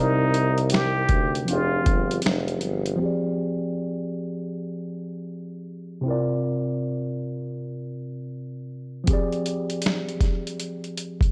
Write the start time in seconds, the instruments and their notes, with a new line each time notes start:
Already playing: tuba C2, tine electric piano C3 C4 D5, muted trumpet D#4
0.00 tine electric piano D#4 A#4
0.34 closed hi-hat
0.58 closed hi-hat
0.70 muted trumpet G4, closed hi-hat
0.74 finger snap, snare
1.09 tuba D2, kick, closed hi-hat
1.35 closed hi-hat
1.45 tuba F1, tine electric piano F3 C4, muted trumpet F4, closed hi-hat
1.50 tine electric piano D4 G4
1.54 tine electric piano G#4
1.86 tuba G1, kick, closed hi-hat
2.11 closed hi-hat
2.22 tuba F1, closed hi-hat
2.26 finger snap, snare
2.48 closed hi-hat
2.61 tuba G1, closed hi-hat
2.86 closed hi-hat
2.96 tine electric piano F3 C4
3.01 tine electric piano G4 G#4
3.05 tine electric piano D5
6.01 tine electric piano C3 C4
6.06 tine electric piano E4 A#4
6.10 tine electric piano F4 D5
9.04 tine electric piano F3 C4, kick, closed hi-hat
9.09 tine electric piano G4 G#4
9.13 tine electric piano D5
9.32 closed hi-hat
9.46 closed hi-hat
9.70 closed hi-hat
9.82 closed hi-hat
9.86 finger snap, snare
10.09 closed hi-hat
10.21 kick, snare, closed hi-hat
10.47 closed hi-hat
10.60 closed hi-hat
10.84 closed hi-hat
10.97 closed hi-hat
11.21 kick, closed hi-hat